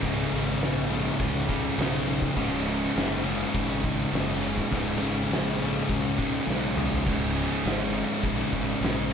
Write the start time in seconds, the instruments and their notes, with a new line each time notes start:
0.02 fingered electric bass C#1, distorted electric guitar C#2 G#2 C#3, kick, ride
0.32 fingered electric bass G#1, distorted electric guitar C#2 G#2 C#3, ride
0.60 fingered electric bass A#1, distorted electric guitar C#2 G#2 C#3, snare, ride
0.90 distorted electric guitar C#2 G#2 C#3, ride
1.08 snare
1.19 distorted electric guitar C#2 G#2 C#3, fingered electric bass C#2, kick, ride
1.49 distorted electric guitar C#2 G#2 C#3, kick, ride
1.77 fingered electric bass B1, distorted electric guitar C#2 G#2 C#3, snare, ride
2.07 distorted electric guitar C#2 G#2 C#3, ride
2.22 kick
2.36 fingered electric bass C#1, distorted electric guitar C#2 G#2 C#3, kick, crash
2.66 distorted electric guitar C#2 G#2 C#3, ride
2.95 fingered electric bass F#1, distorted electric guitar C#2 G#2 C#3, snare, ride
3.25 distorted electric guitar C#2 G#2 C#3, ride
3.54 fingered electric bass G#1, distorted electric guitar C#2 G#2 C#3, kick, ride
3.83 distorted electric guitar C#2 G#2 C#3, kick, ride
4.12 fingered electric bass F#1, distorted electric guitar C#2 G#2 C#3, snare, ride
4.42 distorted electric guitar C#2 G#2 C#3, ride
4.58 kick
4.72 fingered electric bass C#1, distorted electric guitar C#2 G#2 C#3, kick, ride
5.01 fingered electric bass G#1, distorted electric guitar C#2 G#2 C#3, ride
5.30 fingered electric bass A#1, distorted electric guitar C#2 G#2 C#3, snare, ride
5.59 distorted electric guitar C#2 G#2 C#3, ride
5.89 distorted electric guitar C#2 G#2 C#3, fingered electric bass C#2, kick, ride
6.18 distorted electric guitar C#2 G#2 C#3, kick, ride
6.47 fingered electric bass B1, distorted electric guitar C#2 G#2 C#3, snare
6.77 distorted electric guitar C#2 G#2 C#3, mid tom
6.92 floor tom
7.06 fingered electric bass C#1, distorted electric guitar C#2 G#2 C#3, kick, crash
7.36 distorted electric guitar C#2 G#2 C#3, ride
7.65 fingered electric bass G#1, distorted electric guitar C#2 G#2 C#3, snare, ride
7.94 distorted electric guitar C#2 G#2 C#3, ride
8.11 snare
8.23 fingered electric bass A#1, distorted electric guitar C#2 G#2 C#3, kick, ride
8.52 fingered electric bass G#1, distorted electric guitar C#2 G#2 C#3, kick, ride
8.81 fingered electric bass A#1, distorted electric guitar C#2 G#2 C#3, snare, ride
9.10 distorted electric guitar C#2